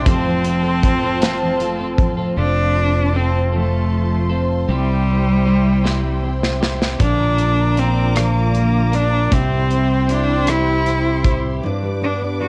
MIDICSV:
0, 0, Header, 1, 7, 480
1, 0, Start_track
1, 0, Key_signature, -1, "major"
1, 0, Tempo, 771208
1, 38, Time_signature, 6, 3, 24, 8
1, 7769, End_track
2, 0, Start_track
2, 0, Title_t, "String section"
2, 0, Program_c, 0, 48
2, 0, Note_on_c, 0, 72, 68
2, 0, Note_on_c, 0, 84, 77
2, 37, Note_on_c, 0, 81, 71
2, 41, Note_on_c, 0, 65, 75
2, 1447, Note_off_c, 0, 72, 0
2, 1449, Note_off_c, 0, 84, 0
2, 1462, Note_off_c, 0, 81, 0
2, 1463, Note_off_c, 0, 65, 0
2, 1470, Note_on_c, 0, 65, 56
2, 1470, Note_on_c, 0, 84, 58
2, 1473, Note_on_c, 0, 81, 52
2, 1474, Note_on_c, 0, 72, 51
2, 2899, Note_off_c, 0, 65, 0
2, 2901, Note_off_c, 0, 81, 0
2, 2914, Note_on_c, 0, 64, 59
2, 2914, Note_on_c, 0, 79, 55
2, 4330, Note_off_c, 0, 84, 0
2, 4332, Note_off_c, 0, 72, 0
2, 4342, Note_off_c, 0, 64, 0
2, 4342, Note_off_c, 0, 79, 0
2, 4349, Note_on_c, 0, 74, 54
2, 4350, Note_on_c, 0, 82, 61
2, 4350, Note_on_c, 0, 86, 68
2, 4351, Note_on_c, 0, 65, 59
2, 5781, Note_off_c, 0, 74, 0
2, 5782, Note_off_c, 0, 65, 0
2, 5782, Note_off_c, 0, 82, 0
2, 5782, Note_off_c, 0, 86, 0
2, 5793, Note_on_c, 0, 64, 67
2, 5793, Note_on_c, 0, 84, 74
2, 5794, Note_on_c, 0, 79, 63
2, 5795, Note_on_c, 0, 72, 61
2, 7224, Note_off_c, 0, 64, 0
2, 7224, Note_off_c, 0, 79, 0
2, 7224, Note_off_c, 0, 84, 0
2, 7225, Note_off_c, 0, 72, 0
2, 7240, Note_on_c, 0, 71, 68
2, 7241, Note_on_c, 0, 86, 73
2, 7243, Note_on_c, 0, 74, 68
2, 7769, Note_off_c, 0, 71, 0
2, 7769, Note_off_c, 0, 74, 0
2, 7769, Note_off_c, 0, 86, 0
2, 7769, End_track
3, 0, Start_track
3, 0, Title_t, "Cello"
3, 0, Program_c, 1, 42
3, 47, Note_on_c, 1, 60, 93
3, 1241, Note_off_c, 1, 60, 0
3, 1483, Note_on_c, 1, 62, 94
3, 1965, Note_on_c, 1, 60, 77
3, 1974, Note_off_c, 1, 62, 0
3, 2212, Note_on_c, 1, 57, 69
3, 2221, Note_off_c, 1, 60, 0
3, 2684, Note_off_c, 1, 57, 0
3, 2926, Note_on_c, 1, 55, 98
3, 3857, Note_off_c, 1, 55, 0
3, 4362, Note_on_c, 1, 62, 88
3, 4846, Note_on_c, 1, 60, 77
3, 4855, Note_off_c, 1, 62, 0
3, 5084, Note_on_c, 1, 58, 81
3, 5093, Note_off_c, 1, 60, 0
3, 5566, Note_on_c, 1, 62, 89
3, 5575, Note_off_c, 1, 58, 0
3, 5803, Note_on_c, 1, 60, 89
3, 5812, Note_off_c, 1, 62, 0
3, 6290, Note_on_c, 1, 62, 85
3, 6299, Note_off_c, 1, 60, 0
3, 6528, Note_on_c, 1, 64, 92
3, 6538, Note_off_c, 1, 62, 0
3, 7065, Note_off_c, 1, 64, 0
3, 7492, Note_on_c, 1, 62, 65
3, 7598, Note_off_c, 1, 62, 0
3, 7732, Note_on_c, 1, 66, 86
3, 7769, Note_off_c, 1, 66, 0
3, 7769, End_track
4, 0, Start_track
4, 0, Title_t, "Clean electric guitar"
4, 0, Program_c, 2, 27
4, 37, Note_on_c, 2, 53, 82
4, 42, Note_on_c, 2, 60, 91
4, 45, Note_on_c, 2, 65, 89
4, 48, Note_on_c, 2, 69, 93
4, 264, Note_off_c, 2, 53, 0
4, 271, Note_off_c, 2, 60, 0
4, 272, Note_on_c, 2, 53, 57
4, 275, Note_off_c, 2, 65, 0
4, 279, Note_on_c, 2, 60, 63
4, 281, Note_off_c, 2, 69, 0
4, 282, Note_on_c, 2, 65, 68
4, 289, Note_on_c, 2, 69, 73
4, 384, Note_off_c, 2, 69, 0
4, 391, Note_on_c, 2, 69, 63
4, 393, Note_off_c, 2, 65, 0
4, 394, Note_off_c, 2, 53, 0
4, 398, Note_off_c, 2, 60, 0
4, 401, Note_on_c, 2, 65, 49
4, 407, Note_on_c, 2, 60, 48
4, 625, Note_off_c, 2, 69, 0
4, 633, Note_on_c, 2, 69, 67
4, 635, Note_off_c, 2, 65, 0
4, 642, Note_off_c, 2, 60, 0
4, 642, Note_on_c, 2, 65, 58
4, 651, Note_on_c, 2, 60, 52
4, 749, Note_off_c, 2, 60, 0
4, 751, Note_on_c, 2, 53, 79
4, 752, Note_off_c, 2, 65, 0
4, 755, Note_off_c, 2, 69, 0
4, 756, Note_on_c, 2, 60, 87
4, 760, Note_on_c, 2, 65, 89
4, 762, Note_on_c, 2, 69, 98
4, 985, Note_off_c, 2, 53, 0
4, 991, Note_off_c, 2, 60, 0
4, 992, Note_on_c, 2, 53, 61
4, 996, Note_off_c, 2, 65, 0
4, 999, Note_off_c, 2, 69, 0
4, 999, Note_on_c, 2, 60, 58
4, 1003, Note_on_c, 2, 65, 66
4, 1007, Note_on_c, 2, 69, 67
4, 1107, Note_off_c, 2, 69, 0
4, 1114, Note_off_c, 2, 53, 0
4, 1114, Note_on_c, 2, 69, 63
4, 1115, Note_off_c, 2, 65, 0
4, 1118, Note_off_c, 2, 60, 0
4, 1123, Note_on_c, 2, 65, 51
4, 1129, Note_on_c, 2, 60, 49
4, 1345, Note_off_c, 2, 69, 0
4, 1352, Note_on_c, 2, 69, 55
4, 1354, Note_off_c, 2, 65, 0
4, 1362, Note_on_c, 2, 65, 53
4, 1363, Note_off_c, 2, 60, 0
4, 1369, Note_on_c, 2, 60, 44
4, 1471, Note_off_c, 2, 60, 0
4, 1473, Note_on_c, 2, 53, 58
4, 1474, Note_off_c, 2, 69, 0
4, 1475, Note_off_c, 2, 65, 0
4, 1479, Note_on_c, 2, 60, 55
4, 1482, Note_on_c, 2, 65, 62
4, 1486, Note_on_c, 2, 69, 62
4, 1943, Note_off_c, 2, 53, 0
4, 1951, Note_on_c, 2, 53, 47
4, 1955, Note_off_c, 2, 60, 0
4, 1955, Note_off_c, 2, 65, 0
4, 1957, Note_on_c, 2, 60, 47
4, 1961, Note_off_c, 2, 69, 0
4, 1962, Note_on_c, 2, 65, 50
4, 1968, Note_on_c, 2, 69, 57
4, 2185, Note_off_c, 2, 69, 0
4, 2191, Note_off_c, 2, 65, 0
4, 2192, Note_on_c, 2, 69, 49
4, 2193, Note_off_c, 2, 60, 0
4, 2194, Note_off_c, 2, 53, 0
4, 2198, Note_on_c, 2, 65, 48
4, 2200, Note_on_c, 2, 60, 46
4, 2203, Note_on_c, 2, 53, 41
4, 2666, Note_off_c, 2, 69, 0
4, 2673, Note_on_c, 2, 69, 51
4, 2674, Note_off_c, 2, 65, 0
4, 2680, Note_off_c, 2, 53, 0
4, 2682, Note_on_c, 2, 65, 46
4, 2687, Note_off_c, 2, 60, 0
4, 2690, Note_on_c, 2, 60, 42
4, 2914, Note_off_c, 2, 60, 0
4, 2914, Note_on_c, 2, 48, 63
4, 2915, Note_off_c, 2, 69, 0
4, 2917, Note_on_c, 2, 55, 73
4, 2919, Note_off_c, 2, 65, 0
4, 2921, Note_on_c, 2, 60, 71
4, 2924, Note_on_c, 2, 64, 71
4, 2926, Note_on_c, 2, 67, 71
4, 3384, Note_off_c, 2, 55, 0
4, 3392, Note_off_c, 2, 60, 0
4, 3392, Note_on_c, 2, 55, 47
4, 3396, Note_off_c, 2, 48, 0
4, 3398, Note_off_c, 2, 64, 0
4, 3400, Note_on_c, 2, 60, 47
4, 3402, Note_off_c, 2, 67, 0
4, 3405, Note_on_c, 2, 64, 52
4, 3410, Note_on_c, 2, 67, 49
4, 3628, Note_off_c, 2, 67, 0
4, 3631, Note_off_c, 2, 64, 0
4, 3634, Note_off_c, 2, 60, 0
4, 3635, Note_off_c, 2, 55, 0
4, 3636, Note_on_c, 2, 67, 61
4, 3638, Note_on_c, 2, 64, 66
4, 3641, Note_on_c, 2, 60, 56
4, 3644, Note_on_c, 2, 55, 46
4, 3648, Note_on_c, 2, 48, 54
4, 4105, Note_off_c, 2, 67, 0
4, 4113, Note_on_c, 2, 67, 56
4, 4116, Note_off_c, 2, 64, 0
4, 4120, Note_off_c, 2, 60, 0
4, 4121, Note_off_c, 2, 55, 0
4, 4123, Note_off_c, 2, 48, 0
4, 4123, Note_on_c, 2, 64, 55
4, 4131, Note_on_c, 2, 60, 48
4, 4352, Note_on_c, 2, 46, 72
4, 4355, Note_on_c, 2, 50, 64
4, 4356, Note_off_c, 2, 67, 0
4, 4357, Note_off_c, 2, 60, 0
4, 4358, Note_on_c, 2, 53, 63
4, 4359, Note_off_c, 2, 64, 0
4, 4360, Note_on_c, 2, 58, 70
4, 4361, Note_on_c, 2, 62, 75
4, 4364, Note_on_c, 2, 70, 72
4, 4824, Note_off_c, 2, 53, 0
4, 4830, Note_off_c, 2, 58, 0
4, 4831, Note_on_c, 2, 53, 50
4, 4835, Note_off_c, 2, 62, 0
4, 4836, Note_off_c, 2, 46, 0
4, 4837, Note_off_c, 2, 50, 0
4, 4837, Note_on_c, 2, 58, 57
4, 4842, Note_off_c, 2, 70, 0
4, 4843, Note_on_c, 2, 62, 59
4, 4848, Note_on_c, 2, 70, 56
4, 5065, Note_off_c, 2, 70, 0
4, 5069, Note_off_c, 2, 62, 0
4, 5071, Note_off_c, 2, 58, 0
4, 5072, Note_off_c, 2, 53, 0
4, 5073, Note_on_c, 2, 70, 59
4, 5076, Note_on_c, 2, 62, 60
4, 5078, Note_on_c, 2, 58, 56
4, 5080, Note_on_c, 2, 53, 51
4, 5083, Note_on_c, 2, 50, 50
4, 5086, Note_on_c, 2, 46, 48
4, 5544, Note_off_c, 2, 70, 0
4, 5551, Note_off_c, 2, 62, 0
4, 5551, Note_on_c, 2, 70, 54
4, 5556, Note_off_c, 2, 58, 0
4, 5559, Note_on_c, 2, 62, 48
4, 5560, Note_off_c, 2, 53, 0
4, 5562, Note_off_c, 2, 50, 0
4, 5563, Note_off_c, 2, 46, 0
4, 5564, Note_on_c, 2, 58, 43
4, 5569, Note_on_c, 2, 53, 39
4, 5791, Note_on_c, 2, 48, 63
4, 5793, Note_off_c, 2, 53, 0
4, 5795, Note_on_c, 2, 55, 66
4, 5796, Note_off_c, 2, 58, 0
4, 5796, Note_off_c, 2, 70, 0
4, 5799, Note_off_c, 2, 62, 0
4, 5799, Note_on_c, 2, 60, 78
4, 5801, Note_on_c, 2, 64, 75
4, 5802, Note_on_c, 2, 67, 71
4, 6268, Note_off_c, 2, 55, 0
4, 6269, Note_off_c, 2, 60, 0
4, 6271, Note_on_c, 2, 55, 53
4, 6275, Note_off_c, 2, 64, 0
4, 6276, Note_off_c, 2, 48, 0
4, 6277, Note_on_c, 2, 60, 60
4, 6282, Note_on_c, 2, 64, 53
4, 6284, Note_off_c, 2, 67, 0
4, 6287, Note_on_c, 2, 67, 55
4, 6506, Note_off_c, 2, 67, 0
4, 6509, Note_off_c, 2, 64, 0
4, 6512, Note_off_c, 2, 60, 0
4, 6513, Note_on_c, 2, 67, 58
4, 6516, Note_off_c, 2, 55, 0
4, 6517, Note_on_c, 2, 64, 54
4, 6519, Note_on_c, 2, 60, 54
4, 6523, Note_on_c, 2, 55, 52
4, 6524, Note_on_c, 2, 48, 48
4, 6991, Note_off_c, 2, 67, 0
4, 6994, Note_on_c, 2, 67, 60
4, 6995, Note_off_c, 2, 64, 0
4, 7001, Note_off_c, 2, 60, 0
4, 7002, Note_on_c, 2, 64, 51
4, 7003, Note_off_c, 2, 48, 0
4, 7010, Note_on_c, 2, 60, 48
4, 7238, Note_off_c, 2, 67, 0
4, 7242, Note_off_c, 2, 64, 0
4, 7246, Note_off_c, 2, 60, 0
4, 7557, Note_off_c, 2, 55, 0
4, 7769, End_track
5, 0, Start_track
5, 0, Title_t, "Steel-string acoustic guitar"
5, 0, Program_c, 3, 25
5, 0, Note_on_c, 3, 48, 84
5, 0, Note_on_c, 3, 55, 58
5, 0, Note_on_c, 3, 60, 68
5, 41, Note_on_c, 3, 41, 86
5, 45, Note_off_c, 3, 60, 0
5, 45, Note_on_c, 3, 60, 73
5, 88, Note_off_c, 3, 48, 0
5, 89, Note_off_c, 3, 55, 0
5, 162, Note_on_c, 3, 53, 57
5, 280, Note_on_c, 3, 57, 58
5, 398, Note_off_c, 3, 60, 0
5, 401, Note_on_c, 3, 60, 66
5, 519, Note_off_c, 3, 53, 0
5, 521, Note_on_c, 3, 53, 58
5, 640, Note_off_c, 3, 60, 0
5, 642, Note_on_c, 3, 60, 64
5, 754, Note_off_c, 3, 41, 0
5, 761, Note_on_c, 3, 41, 69
5, 763, Note_off_c, 3, 60, 0
5, 765, Note_on_c, 3, 60, 52
5, 881, Note_off_c, 3, 53, 0
5, 883, Note_on_c, 3, 53, 61
5, 999, Note_off_c, 3, 57, 0
5, 1001, Note_on_c, 3, 57, 63
5, 1121, Note_off_c, 3, 60, 0
5, 1123, Note_on_c, 3, 60, 66
5, 1241, Note_off_c, 3, 53, 0
5, 1243, Note_on_c, 3, 53, 52
5, 1361, Note_off_c, 3, 60, 0
5, 1363, Note_on_c, 3, 60, 69
5, 1471, Note_off_c, 3, 41, 0
5, 1478, Note_on_c, 3, 41, 64
5, 1479, Note_off_c, 3, 60, 0
5, 1482, Note_on_c, 3, 60, 53
5, 1719, Note_off_c, 3, 57, 0
5, 1721, Note_on_c, 3, 57, 46
5, 1957, Note_off_c, 3, 60, 0
5, 1960, Note_on_c, 3, 60, 55
5, 2200, Note_off_c, 3, 53, 0
5, 2203, Note_on_c, 3, 53, 46
5, 2433, Note_off_c, 3, 57, 0
5, 2440, Note_on_c, 3, 57, 52
5, 2676, Note_off_c, 3, 60, 0
5, 2679, Note_on_c, 3, 60, 48
5, 2918, Note_off_c, 3, 41, 0
5, 2918, Note_on_c, 3, 48, 68
5, 2919, Note_off_c, 3, 60, 0
5, 2922, Note_on_c, 3, 64, 56
5, 2967, Note_off_c, 3, 57, 0
5, 2968, Note_off_c, 3, 53, 0
5, 3160, Note_on_c, 3, 60, 46
5, 3390, Note_off_c, 3, 64, 0
5, 3397, Note_on_c, 3, 64, 54
5, 3635, Note_on_c, 3, 55, 46
5, 3868, Note_off_c, 3, 60, 0
5, 3876, Note_on_c, 3, 60, 55
5, 4107, Note_off_c, 3, 64, 0
5, 4114, Note_on_c, 3, 64, 50
5, 4355, Note_on_c, 3, 46, 70
5, 4356, Note_off_c, 3, 64, 0
5, 4359, Note_off_c, 3, 48, 0
5, 4360, Note_on_c, 3, 62, 58
5, 4405, Note_off_c, 3, 55, 0
5, 4405, Note_off_c, 3, 60, 0
5, 4594, Note_on_c, 3, 58, 52
5, 4831, Note_off_c, 3, 62, 0
5, 4839, Note_on_c, 3, 62, 58
5, 5078, Note_on_c, 3, 53, 57
5, 5312, Note_off_c, 3, 58, 0
5, 5320, Note_on_c, 3, 58, 59
5, 5554, Note_off_c, 3, 62, 0
5, 5561, Note_on_c, 3, 62, 53
5, 5799, Note_off_c, 3, 46, 0
5, 5799, Note_on_c, 3, 48, 75
5, 5800, Note_off_c, 3, 62, 0
5, 5803, Note_on_c, 3, 64, 63
5, 5848, Note_off_c, 3, 53, 0
5, 5848, Note_off_c, 3, 58, 0
5, 6040, Note_on_c, 3, 60, 54
5, 6270, Note_off_c, 3, 64, 0
5, 6277, Note_on_c, 3, 64, 59
5, 6518, Note_on_c, 3, 55, 49
5, 6751, Note_off_c, 3, 60, 0
5, 6758, Note_on_c, 3, 60, 53
5, 6994, Note_off_c, 3, 64, 0
5, 7002, Note_on_c, 3, 64, 53
5, 7240, Note_on_c, 3, 43, 86
5, 7241, Note_off_c, 3, 48, 0
5, 7241, Note_off_c, 3, 64, 0
5, 7244, Note_on_c, 3, 62, 68
5, 7288, Note_off_c, 3, 60, 0
5, 7359, Note_off_c, 3, 55, 0
5, 7362, Note_on_c, 3, 55, 55
5, 7480, Note_on_c, 3, 59, 59
5, 7601, Note_off_c, 3, 62, 0
5, 7603, Note_on_c, 3, 62, 70
5, 7715, Note_off_c, 3, 55, 0
5, 7722, Note_on_c, 3, 55, 62
5, 7769, Note_off_c, 3, 43, 0
5, 7769, Note_off_c, 3, 55, 0
5, 7769, Note_off_c, 3, 59, 0
5, 7769, Note_off_c, 3, 62, 0
5, 7769, End_track
6, 0, Start_track
6, 0, Title_t, "Fingered electric bass"
6, 0, Program_c, 4, 33
6, 40, Note_on_c, 4, 29, 115
6, 1452, Note_off_c, 4, 29, 0
6, 1478, Note_on_c, 4, 29, 79
6, 2893, Note_off_c, 4, 29, 0
6, 2916, Note_on_c, 4, 36, 93
6, 4333, Note_off_c, 4, 36, 0
6, 4358, Note_on_c, 4, 34, 99
6, 5775, Note_off_c, 4, 34, 0
6, 5800, Note_on_c, 4, 36, 101
6, 7217, Note_off_c, 4, 36, 0
6, 7769, End_track
7, 0, Start_track
7, 0, Title_t, "Drums"
7, 39, Note_on_c, 9, 36, 119
7, 39, Note_on_c, 9, 42, 87
7, 101, Note_off_c, 9, 36, 0
7, 101, Note_off_c, 9, 42, 0
7, 277, Note_on_c, 9, 42, 50
7, 340, Note_off_c, 9, 42, 0
7, 519, Note_on_c, 9, 36, 82
7, 521, Note_on_c, 9, 42, 52
7, 581, Note_off_c, 9, 36, 0
7, 584, Note_off_c, 9, 42, 0
7, 759, Note_on_c, 9, 42, 87
7, 767, Note_on_c, 9, 38, 98
7, 822, Note_off_c, 9, 42, 0
7, 829, Note_off_c, 9, 38, 0
7, 999, Note_on_c, 9, 42, 43
7, 1061, Note_off_c, 9, 42, 0
7, 1236, Note_on_c, 9, 36, 106
7, 1240, Note_on_c, 9, 42, 58
7, 1298, Note_off_c, 9, 36, 0
7, 1302, Note_off_c, 9, 42, 0
7, 3645, Note_on_c, 9, 38, 49
7, 3707, Note_off_c, 9, 38, 0
7, 4004, Note_on_c, 9, 38, 57
7, 4066, Note_off_c, 9, 38, 0
7, 4126, Note_on_c, 9, 38, 86
7, 4188, Note_off_c, 9, 38, 0
7, 4244, Note_on_c, 9, 38, 82
7, 4307, Note_off_c, 9, 38, 0
7, 4356, Note_on_c, 9, 42, 75
7, 4358, Note_on_c, 9, 36, 96
7, 4419, Note_off_c, 9, 42, 0
7, 4420, Note_off_c, 9, 36, 0
7, 4595, Note_on_c, 9, 42, 43
7, 4658, Note_off_c, 9, 42, 0
7, 4837, Note_on_c, 9, 42, 43
7, 4899, Note_off_c, 9, 42, 0
7, 5078, Note_on_c, 9, 42, 79
7, 5085, Note_on_c, 9, 37, 91
7, 5140, Note_off_c, 9, 42, 0
7, 5147, Note_off_c, 9, 37, 0
7, 5318, Note_on_c, 9, 42, 37
7, 5380, Note_off_c, 9, 42, 0
7, 5558, Note_on_c, 9, 42, 48
7, 5621, Note_off_c, 9, 42, 0
7, 5799, Note_on_c, 9, 36, 98
7, 5799, Note_on_c, 9, 42, 78
7, 5861, Note_off_c, 9, 42, 0
7, 5862, Note_off_c, 9, 36, 0
7, 6039, Note_on_c, 9, 42, 43
7, 6101, Note_off_c, 9, 42, 0
7, 6280, Note_on_c, 9, 42, 49
7, 6342, Note_off_c, 9, 42, 0
7, 6518, Note_on_c, 9, 42, 80
7, 6525, Note_on_c, 9, 37, 85
7, 6580, Note_off_c, 9, 42, 0
7, 6587, Note_off_c, 9, 37, 0
7, 6758, Note_on_c, 9, 42, 41
7, 6768, Note_on_c, 9, 37, 25
7, 6821, Note_off_c, 9, 42, 0
7, 6830, Note_off_c, 9, 37, 0
7, 6997, Note_on_c, 9, 36, 90
7, 6998, Note_on_c, 9, 42, 47
7, 7060, Note_off_c, 9, 36, 0
7, 7060, Note_off_c, 9, 42, 0
7, 7769, End_track
0, 0, End_of_file